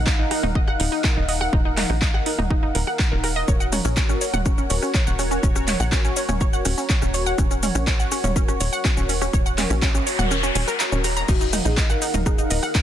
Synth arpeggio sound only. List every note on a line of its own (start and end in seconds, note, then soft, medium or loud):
0.07 0.11 D#4 medium
0.19 0.26 D#4 medium
0.31 0.36 D#4 medium
0.43 0.55 D#4 medium
0.55 0.63 D#5 medium
0.68 0.75 F#5 loud
0.80 0.84 D#4 medium
0.92 1.00 D#4 medium
1.04 1.09 D#4 medium
1.16 1.28 D#4 medium
1.29 1.36 D#5 medium
1.41 1.48 F#5 loud
1.53 1.58 D#4 medium
1.65 1.73 D#4 medium
1.77 1.82 D#4 medium
1.90 2.01 D#4 medium
2.02 2.09 D#5 medium
2.14 2.22 F#5 loud
2.26 2.31 D#4 medium
2.39 2.46 D#4 medium
2.50 2.55 D#4 medium
2.63 2.74 D#4 medium
2.75 2.83 A#4 medium
2.87 2.92 F#5 medium
2.99 3.07 F#5 medium
3.12 3.16 A#4 medium
3.24 3.31 A#4 medium
3.36 3.44 D#5 medium
3.48 3.56 C#5 medium
3.60 3.68 F#5 loud
3.73 3.77 C#4 medium
3.85 3.92 C#4 medium
3.97 4.02 C#4 medium
4.09 4.20 C#4 medium
4.21 4.29 C#5 medium
4.34 4.41 F#5 loud
4.46 4.50 C#4 medium
4.58 4.66 C#4 medium
4.70 4.75 C#4 medium
4.82 4.94 C#4 medium
4.95 5.02 C#5 medium
5.07 5.14 F#5 loud
5.19 5.23 C#4 medium
5.31 5.39 C#4 medium
5.43 5.48 C#4 medium
5.56 5.67 C#4 medium
5.68 5.75 C#5 medium
5.80 5.88 F#5 loud
5.92 5.97 C#4 medium
6.05 6.12 C#4 medium
6.17 6.21 C#4 medium
6.29 6.40 C#4 medium
6.41 6.49 C#5 medium
6.53 6.61 F#5 loud
6.65 6.70 C#4 medium
6.78 6.85 C#4 medium
6.90 6.94 C#4 medium
7.02 7.13 C#4 medium
7.14 7.22 C#5 medium
7.26 7.34 F#5 loud
7.39 7.43 C#4 medium
7.51 7.58 C#4 medium
7.63 7.67 C#4 medium
7.75 7.86 C#4 medium
7.87 7.95 C#5 medium
8.00 8.07 F#5 loud
8.12 8.16 C#4 medium
8.24 8.31 C#4 medium
8.36 8.41 C#4 medium
8.48 8.60 C#4 medium
8.60 8.68 C#5 medium
8.73 8.80 F#5 loud
8.85 8.89 C#4 medium
8.97 9.05 C#4 medium
9.09 9.14 C#4 medium
9.21 9.33 C#4 medium
9.33 9.41 C#5 medium
9.46 9.53 F#5 loud
9.58 9.63 C#4 medium
9.70 9.78 C#4 medium
9.82 9.87 C#4 medium
9.94 10.06 C#4 medium
10.07 10.14 C#5 medium
10.19 10.26 F#5 loud
10.31 10.36 C#4 medium
10.43 10.51 C#4 medium
10.55 10.60 C#4 loud
10.68 10.75 A#4 loud
10.80 10.84 A#5 medium
10.92 10.97 C#4 medium
11.04 11.15 A#5 medium
11.17 11.28 A#5 loud
11.29 11.33 D#4 medium
11.41 11.48 D#4 medium
11.53 11.58 D#4 medium
11.65 11.76 D#4 medium
11.77 11.85 D#5 medium
11.90 11.97 F#5 medium
12.02 12.06 D#4 medium
12.14 12.22 D#4 medium
12.26 12.31 D#4 medium
12.38 12.50 D#4 medium
12.50 12.58 D#5 medium
12.63 12.70 F#5 loud
12.75 12.79 D#4 medium